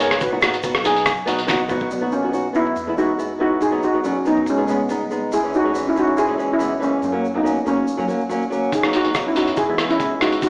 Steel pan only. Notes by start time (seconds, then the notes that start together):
0.00 A#4 C#5
0.21 F#4 B4
1.92 F#3 B3
2.13 A#3 C#4
2.55 B3 E4
2.98 D#4 F#4
3.41 D#4 F#4
3.62 D#4 G#4
3.84 D#4 F#4
4.04 F#3 C#4
4.27 B3 D#4
4.50 G#3 C#4
4.70 G#3 B3
5.33 E4 G#4
5.55 D#4 F#4
5.87 C#4 E4
5.98 D#4 F#4
6.17 E4 G#4
6.52 C#4 E4
6.82 A#3 C#4
7.03 A#3 C#4
7.36 B3 D#4
7.66 A#3 C#4
8.73 D#4 G#4
8.95 D#4 F#4
9.27 C#4 E4
9.35 D#4 F#4
9.56 E4 G#4
9.89 C#4 E4
10.21 D#4 F#4
10.43 D#4 F#4